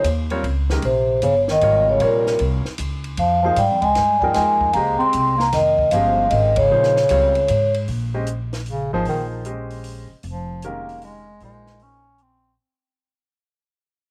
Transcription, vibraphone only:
0.85 1.21 C5 medium
1.23 1.34 C#5 medium
1.52 1.87 D#5 loud
1.89 2.01 C#5 medium
2.03 2.39 A#4 medium
3.19 3.43 F5 medium
3.46 3.51 F5 medium
3.59 3.82 G5 medium
3.84 4.24 G#5 medium
4.22 4.34 G5 medium
4.35 4.72 G#5 medium
4.74 5.01 A#5 medium
5.01 5.41 C6 loud
5.40 5.54 A#5 medium
5.54 5.90 D#5 medium
5.91 6.32 F5 medium
6.30 6.55 D#5 medium
6.57 7.71 C#5 medium

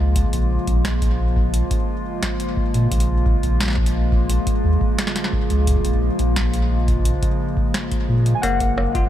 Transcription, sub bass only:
0.00 0.24 C#2 medium
0.33 0.58 A#1 medium
0.67 1.64 A#1 loud
2.74 2.87 A#2 medium
2.91 3.36 A#1 loud
3.43 4.40 A#1 loud
4.64 4.77 D#2 medium
5.50 5.76 C#2 medium
5.85 6.10 A#1 medium
6.19 7.15 A#1 loud
8.09 8.34 A#2 medium
8.43 8.88 F#1 loud
8.95 9.09 F#1 loud

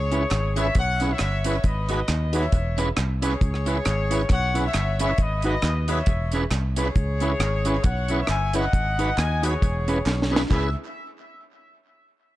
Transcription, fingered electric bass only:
0.00 0.25 C#2 loud
0.31 0.69 G#1 loud
0.75 1.13 B1 loud
1.20 1.58 G1 medium
1.64 2.02 G#1 loud
2.09 2.46 D#2 loud
2.53 2.90 E1 loud
2.97 3.35 C2 medium
3.41 3.79 C#2 loud
3.86 4.24 G#1 loud
4.30 4.68 B1 loud
4.75 5.12 G1 medium
5.18 5.56 G#1 loud
5.63 6.01 D#2 loud
6.07 6.45 E1 loud
6.51 6.89 C2 medium
6.96 7.33 C#2 loud
7.40 7.78 G#1 loud
7.84 8.22 B1 loud
8.29 8.67 G1 medium
8.73 9.11 G#1 loud
9.18 9.55 D#2 loud
9.63 10.00 E1 loud
10.06 10.44 B1 loud
10.51 10.74 C#2 medium

